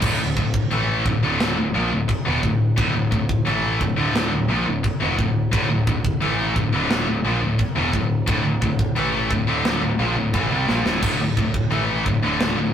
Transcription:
0.02 D1 D2 A2, kick, crash, china
0.20 D1 D2 A2
0.37 D1 D2 A2, kick
0.54 kick
0.71 A1 A2 E3 A3, china
1.06 D1 D2 A2, kick
1.23 D1 D2 A2 D3
1.40 snare, china
1.57 D1 D2 A2
1.74 A#1 A#2 F3
1.92 D1 D2 A2
2.08 muted distorted electric guitar stroke, muted picked electric bass stroke, kick, china
2.25 E1 E2 B2
2.43 D1 D2 A2, kick
2.77 D1 D2 A2, kick, china
2.94 D1 D2 A2
3.11 D1 D2 A2, kick
3.29 kick
3.45 A1 A2 E3 A3, china
3.80 D1 D2 A2, kick
3.96 D1 D2 A2 D3
4.15 snare, china
4.31 D1 D2 A2
4.49 A#1 A#2 F3
4.66 D1 D2 A2
4.84 muted distorted electric guitar stroke, muted picked electric bass stroke, kick, china
5.00 E1 E2 B2
5.18 D1 D2 A2, kick
5.52 D1 D2 A2, kick, china
5.69 D1 D2 A2
5.87 D1 D2 A2, kick
6.05 kick
6.21 A1 A2 E3 A3, china
6.56 D1 D2 A2, kick
6.73 D1 D2 A2 D3
6.90 snare, china
7.08 D1 D2 A2
7.24 A#1 A#2 F3
7.42 D1 D2 A2
7.58 muted distorted electric guitar stroke, muted picked electric bass stroke, kick, china
7.76 E1 E2 B2
7.93 D1 D2 A2, kick
8.27 D1 D2 A2, kick, china
8.45 D1 D2 A2
8.61 D1 D2 A2, kick
8.79 kick
8.96 A1 A2 E3 A3, china
9.31 D1 D2 A2, kick
9.47 D1 D2 A2 D3
9.65 snare, china
9.82 D1 D2 A2
9.99 A#1 A#2 F3
10.16 D1 D2 A2
10.34 A1 A2 E3, kick, china
10.50 C2 C3 G3
10.68 A#1 A#2 F3, snare
10.85 D1 D2 A2, snare
11.02 D1 D2 A2, kick, crash, china, splash
11.20 D1 D2 A2
11.37 D1 D2 A2, kick
11.54 kick
11.71 A1 A2 E3 A3, china
12.05 D1 D2 A2, kick
12.23 D1 D2 A2 D3
12.40 snare, china
12.57 D1 D2 A2

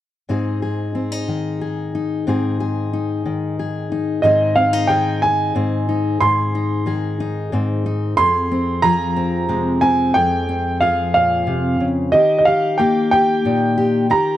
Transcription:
0.29 G#2 C4 D#4 G#4
0.62 G#4
0.95 C4
1.12 D#4
1.28 D#3
1.61 G#4
1.95 D#4
2.27 G#2 C4 D#4 G#4
2.60 G#4
2.93 D#4
3.26 D#3
3.59 G#4
3.92 D#4
4.22 G#2 D#3 C4 D#4 G#4 D#5
4.56 C4 F5
4.73 D#4
4.87 D#3 G#4 G5
5.22 D#4 G#5
5.55 G#2 C4
5.89 D#4
6.21 G#2 G#4 C6
6.55 D#4
6.86 D#3 G#4
7.20 D#4
7.52 G#2 C4
7.86 D#4
8.17 F2 G#4 C6
8.51 C4
8.82 F3 G#4 A#5
9.16 C4
9.48 C3 G#3
9.81 C4 G#5
10.14 F2 G#4 G5
10.49 C4
10.81 F3 G#4 F5
11.14 A#2 F5
11.47 C3
11.80 C#3
12.12 D#3 G4 D#5
12.39 D#5
12.45 G4 F5
12.78 A#3 G4 G5
13.11 G4 G5
13.45 A#2 D#4
13.78 G4
14.10 D#3 G4 A#5

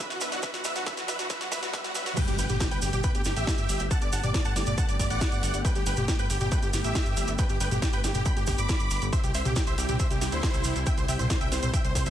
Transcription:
Already playing: B2 F#3 D4 B4 F#5, riser
0.10 F#4, snare, closed hi-hat, cabasa
0.21 B4 E5, snare, open hi-hat, cabasa
0.32 F#4, snare, closed hi-hat, cabasa
0.43 B4 E5, kick, snare, closed hi-hat, cabasa
0.54 F#4, snare, closed hi-hat, cabasa
0.64 B4 E5, snare, open hi-hat, cabasa
0.76 F#4, snare, closed hi-hat, mid tom, cabasa
0.86 B4 E5, kick, snare, closed hi-hat, cabasa
0.97 F#4, snare, closed hi-hat, cabasa
1.08 B4 E5, snare, open hi-hat, cabasa
1.19 F#4, snare, closed hi-hat, mid tom, cabasa
1.30 B4 E5, kick, snare, closed hi-hat, swell, cabasa
1.41 F#4, snare, closed hi-hat, cabasa
1.52 B4 E5, kick, snare, open hi-hat, cabasa
1.62 F#4, snare, closed hi-hat, cabasa
1.73 B4 E5, kick, snare, closed hi-hat, cabasa
1.84 F#4, snare, closed hi-hat, cabasa
1.95 B4 E5, snare, open hi-hat, cabasa
2.06 F#4, snare, closed hi-hat, cabasa
2.17 A3 B3 G4 B4 G5, kick, closed hi-hat, crash, impact, cabasa
2.27 G1 G4, closed hi-hat, cabasa
2.39 G1 B4 G5, open hi-hat, cabasa
2.49 G1 G4, closed hi-hat, mid tom, cabasa
2.60 G4, kick, snare, closed hi-hat, cabasa
2.71 G1 B4 G5, closed hi-hat, cabasa
2.82 G1 G4, open hi-hat, cabasa
2.93 G1 G4, closed hi-hat, mid tom, cabasa
3.03 B4 G5, kick, closed hi-hat, cabasa
3.15 G1 G4, closed hi-hat, cabasa
3.24 G1 G4, snare, open hi-hat, cabasa
3.36 A1 G4 E5, closed hi-hat, cabasa
3.47 kick, snare, closed hi-hat, cabasa
3.58 G1, closed hi-hat, cabasa
3.69 G1, open hi-hat, cabasa
3.79 G1, closed hi-hat, cabasa
3.91 F#5 A5, kick, closed hi-hat, cabasa
4.01 G1 D5, closed hi-hat, cabasa
4.12 G1 F#5 A5, open hi-hat, cabasa
4.23 G1 D5, closed hi-hat, mid tom, cabasa
4.34 D5, kick, snare, closed hi-hat, cabasa
4.45 G1 F#5 A5, closed hi-hat, cabasa
4.56 G1 D5, snare, open hi-hat, cabasa
4.66 G1 D5, closed hi-hat, mid tom, cabasa
4.78 F#5 A5, kick, closed hi-hat, cabasa
4.89 G1 D5, closed hi-hat, cabasa
4.99 G1 D5, kick, open hi-hat, cabasa
5.10 A1 D5 F#5, closed hi-hat, cabasa
5.21 kick, snare, closed hi-hat, cabasa
5.32 G1, closed hi-hat, cabasa
5.43 G1, open hi-hat, cabasa
5.54 G1, closed hi-hat, cabasa
5.65 B4 G5, kick, closed hi-hat, cabasa
5.75 G1 G4, closed hi-hat, cabasa
5.86 G1 B4 G5, open hi-hat, cabasa
5.96 G1 G4, closed hi-hat, mid tom, cabasa
6.08 G4, kick, snare, closed hi-hat, cabasa
6.19 G1 B4 G5, closed hi-hat, cabasa
6.30 G1 G4, open hi-hat, cabasa
6.41 G1 G4, closed hi-hat, mid tom, cabasa
6.52 B4 G5, kick, closed hi-hat, cabasa
6.63 G1 G4, closed hi-hat, cabasa
6.73 G1 G4, snare, open hi-hat, cabasa
6.84 A1 G4 E5, closed hi-hat, cabasa
6.95 kick, snare, closed hi-hat, cabasa
7.06 G1, closed hi-hat, cabasa
7.17 G1, open hi-hat, cabasa
7.28 G1, closed hi-hat, cabasa
7.38 B4 G5, kick, closed hi-hat, cabasa
7.49 G1 G4, closed hi-hat, cabasa
7.60 G1 B4 G5, open hi-hat, cabasa
7.71 G1 G4, closed hi-hat, mid tom, cabasa
7.82 G4, kick, snare, closed hi-hat, cabasa
7.93 G1 B4 G5, closed hi-hat, cabasa
8.04 G1 G4, snare, open hi-hat, cabasa
8.14 G1 G4, closed hi-hat, mid tom, cabasa
8.25 G5 B5, kick, closed hi-hat, cabasa
8.37 G1 G4, closed hi-hat, cabasa
8.47 G1 G4, kick, open hi-hat, cabasa
8.58 G1 B5 D6, closed hi-hat, cabasa
8.69 kick, snare, closed hi-hat, cabasa
8.80 G1, closed hi-hat, cabasa
8.91 G1, open hi-hat, cabasa
9.02 G1, closed hi-hat, cabasa
9.13 G3 C4 E4 C5 E5, kick, closed hi-hat, cabasa
9.24 C2 G4, closed hi-hat, cabasa
9.34 C2 C5 E5, open hi-hat, cabasa
9.45 C2 G4, closed hi-hat, mid tom, cabasa
9.56 G4, kick, snare, closed hi-hat, cabasa
9.67 C2 C5 E5, closed hi-hat, cabasa
9.78 C2 G4, open hi-hat, cabasa
9.89 C2 G4, closed hi-hat, mid tom, cabasa
9.99 C5 E5, kick, closed hi-hat, cabasa
10.10 C2 G4, closed hi-hat, cabasa
10.21 C2 G4, snare, open hi-hat, cabasa
10.32 D2 E4 C5, closed hi-hat, cabasa
10.43 kick, snare, closed hi-hat, cabasa
10.54 C2, closed hi-hat, cabasa
10.64 C2, open hi-hat, cabasa
10.76 C2, closed hi-hat, cabasa
10.86 E5 G5, kick, closed hi-hat, cabasa
10.97 C2 C5, closed hi-hat, cabasa
11.08 C2 E5 G5, open hi-hat, cabasa
11.19 C2 C5, closed hi-hat, mid tom, cabasa
11.30 C5, kick, snare, closed hi-hat, cabasa
11.41 C2 E5 G5, closed hi-hat, cabasa
11.52 C2 C5, snare, open hi-hat, cabasa
11.63 C2 C5, closed hi-hat, mid tom, cabasa
11.73 E5 G5, kick, closed hi-hat, cabasa
11.84 C2 C5, closed hi-hat, cabasa
11.95 C2 C5, kick, open hi-hat, cabasa
12.06 D2 C5 E5, closed hi-hat, cabasa

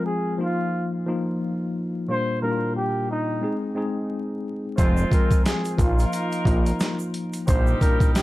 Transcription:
Already playing: F3 G#3 C4 F4
0.06 G#4
0.38 F3 A#3 D#4 F4
0.43 F4
1.06 F3 A#3 D#4 F4
2.08 A#2 G3 A#3 D4 F4 C5
2.42 A#2 G3 A#3 D4 E4 A#4
2.51 F4
2.76 G4
3.11 D#4
3.41 G#3 C4 D#4 G#4
3.75 G#3 C4 D#4 G#4
4.77 F1 F3 G#3 C4 F4 C5, kick, closed hi-hat, shaker
4.97 shaker
5.10 F3 G#3 C4 F4 A#4, kick, closed hi-hat, shaker
5.31 kick, closed hi-hat, shaker
5.45 G#4, snare, closed hi-hat, shaker
5.65 closed hi-hat, shaker
5.77 A#1 F3 A#3 D#4 F4 A#4, kick, closed hi-hat, shaker
5.99 closed hi-hat, shaker
6.13 closed hi-hat, shaker
6.32 closed hi-hat, shaker
6.45 A#1 F3 A#3 D#4 F4, kick, closed hi-hat
6.66 closed hi-hat, shaker
6.80 snare, closed hi-hat, shaker
6.99 shaker
7.14 closed hi-hat
7.33 closed hi-hat, shaker
7.47 A#1 A#2 G3 A#3 D4 D#4 F4 G4 C5, kick, closed hi-hat, shaker
7.67 shaker
7.81 A#2 G3 A#3 D4 E4 A#4, kick, closed hi-hat, shaker
7.91 F4
8.00 kick, closed hi-hat, shaker
8.15 G4, snare, closed hi-hat, shaker

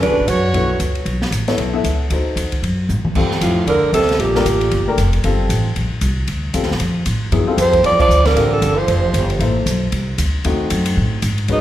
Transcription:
0.02 D2 C#3 D4 F#4 B4 D5, ride
0.11 B1
0.20 A1
0.28 F#2 F#4 C#5, hi-hat pedal, ride
0.54 B1 B3 E4 A4 B4, ride
0.80 C#2, hi-hat pedal, ride
0.95 ride
1.05 B1, ride
1.22 snare
1.31 A1, hi-hat pedal, ride
1.48 B3 E4 A4 C#5, snare, ride
1.58 B1, ride
1.73 B3 E4 A4 E5
1.84 C#2, hi-hat pedal, ride
2.10 D2 D#4 F#4 A4 C5, ride
2.36 D#2, hi-hat pedal, ride
2.52 kick, ride
2.62 F#2, ride
2.89 A2, floor tom, hi-hat pedal
3.04 muted upright bass stroke, mid tom
3.15 G2 G3 C4 F4 A4, kick, crash
3.31 snare
3.41 F2 A2 F4, hi-hat pedal, ride
3.67 E2 D3 A#4, ride
3.83 muted upright bass stroke
3.93 D2 C3 A4, hi-hat pedal, ride
4.02 snare
4.09 snare, ride
4.19 A#1 A#2 G4, ride
4.35 A3 D4 G4 A#4, snare
4.45 A1, hi-hat pedal, ride
4.61 ride
4.71 G1, ride
4.87 A3 D4 G4 A#4
4.98 F1, hi-hat pedal, ride
5.13 ride
5.24 G1 G3 C4 F4 A4, ride
5.49 A1, hi-hat pedal, ride
5.76 A#1, ride
5.90 muted upright bass stroke
6.01 C2, hi-hat pedal, ride
6.27 D2, ride
6.54 E2 G3 C4 F4 A4, hi-hat pedal, ride
6.63 D2, snare
6.71 A#1, snare
6.80 F2, ride
7.06 A2, hi-hat pedal, ride
7.32 G2 F#3 B3 E4 G#4, ride
7.47 G3 C4 F4 A4
7.57 F2 F3 C5, hi-hat pedal, ride
7.73 kick, ride
7.83 E2 F3 D5, ride
7.99 F3 D5, kick, crash
8.09 D2, hi-hat pedal
8.24 D3 A#4, snare, ride
8.35 A1 G3 C4 F4 A4, ride
8.50 D3 A4
8.61 G1, hi-hat pedal, ride
8.75 F3 C5
8.88 F1, ride
9.14 G1, hi-hat pedal, ride
9.30 ride
9.39 A1 A#3 E4 A4 C5, ride
9.66 B1, hi-hat pedal, ride
9.92 C2, ride
10.18 D2, hi-hat pedal, ride
10.44 D#2 A3 C4 D#4 F#4, ride
10.70 F#2, hi-hat pedal, ride
10.85 ride
10.97 A2
11.22 G#2, hi-hat pedal, ride
11.38 ride
11.48 C#2 G#2 G#3 C#4 F#4 B4, ride
11.52 D#4

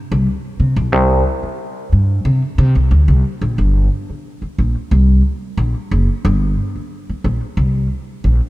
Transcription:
0.12 C2
0.60 C3
0.76 B1
0.92 C2
1.43 muted upright bass stroke
1.93 G2
2.25 C3
2.58 C3
2.75 C2
2.91 D2
3.08 C2
3.41 A#1
3.58 G1
4.09 muted upright bass stroke
4.42 muted upright bass stroke
4.58 A#1
4.91 C2
5.57 A#1
5.91 F#1
6.25 G1
6.75 muted upright bass stroke
7.09 muted upright bass stroke
7.24 A#1
7.57 C2
8.24 A#1

